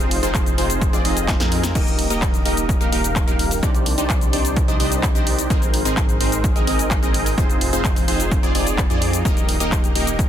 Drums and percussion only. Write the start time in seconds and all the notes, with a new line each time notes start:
0.00 cabasa
0.11 open hi-hat
0.23 closed hi-hat, cabasa
0.35 kick, clap, closed hi-hat, cabasa
0.46 closed hi-hat, cabasa
0.58 open hi-hat
0.70 closed hi-hat, cabasa
0.81 kick, closed hi-hat, cabasa
0.93 closed hi-hat, cabasa
1.05 open hi-hat
1.17 closed hi-hat, cabasa
1.28 kick, snare, clap, closed hi-hat, cabasa
1.40 snare, closed hi-hat, cabasa
1.52 open hi-hat
1.64 snare, closed hi-hat, cabasa
1.75 kick, closed hi-hat, crash, cabasa
1.87 closed hi-hat, cabasa
1.99 open hi-hat
2.10 closed hi-hat, cabasa
2.22 kick, clap, closed hi-hat, cabasa
2.34 closed hi-hat, cabasa
2.46 open hi-hat
2.57 closed hi-hat, cabasa
2.69 kick, closed hi-hat, cabasa
2.81 closed hi-hat, cabasa
2.92 open hi-hat
3.04 closed hi-hat, cabasa
3.16 kick, clap, closed hi-hat, cabasa
3.28 closed hi-hat, cabasa
3.39 open hi-hat
3.51 open hi-hat, cabasa
3.63 kick, closed hi-hat, cabasa
3.75 closed hi-hat, cabasa
3.86 open hi-hat
3.98 closed hi-hat, cabasa
4.10 kick, clap, closed hi-hat, cabasa
4.21 closed hi-hat, cabasa
4.33 open hi-hat
4.45 closed hi-hat, cabasa
4.56 kick, closed hi-hat, cabasa
4.68 closed hi-hat, cabasa
4.80 open hi-hat
4.92 closed hi-hat, cabasa
5.03 kick, clap, closed hi-hat, cabasa
5.15 closed hi-hat, cabasa
5.27 open hi-hat
5.39 closed hi-hat, cabasa
5.50 kick, closed hi-hat, cabasa
5.62 closed hi-hat, cabasa
5.74 open hi-hat
5.85 closed hi-hat, cabasa
5.97 kick, clap, closed hi-hat, cabasa
6.09 closed hi-hat, cabasa
6.21 open hi-hat
6.32 closed hi-hat, cabasa
6.44 kick, closed hi-hat, cabasa
6.56 closed hi-hat, cabasa
6.67 open hi-hat
6.79 closed hi-hat, cabasa
6.91 kick, clap, closed hi-hat, cabasa
7.03 closed hi-hat, cabasa
7.14 open hi-hat
7.26 open hi-hat, cabasa
7.38 kick, closed hi-hat, cabasa
7.50 closed hi-hat, cabasa
7.61 open hi-hat
7.73 closed hi-hat, cabasa
7.85 kick, clap, closed hi-hat, cabasa
7.96 open hi-hat, cabasa
8.08 open hi-hat
8.20 closed hi-hat, cabasa
8.31 kick, closed hi-hat, cabasa
8.43 closed hi-hat, cabasa
8.55 open hi-hat
8.67 closed hi-hat, cabasa
8.78 kick, clap, closed hi-hat, cabasa
8.90 closed hi-hat, cabasa
9.02 open hi-hat
9.13 closed hi-hat, cabasa
9.25 kick, closed hi-hat, cabasa
9.37 closed hi-hat, cabasa
9.49 open hi-hat
9.60 closed hi-hat, cabasa
9.72 kick, clap, closed hi-hat, cabasa
9.84 closed hi-hat, cabasa
9.95 open hi-hat
10.07 closed hi-hat, cabasa
10.19 kick, closed hi-hat, cabasa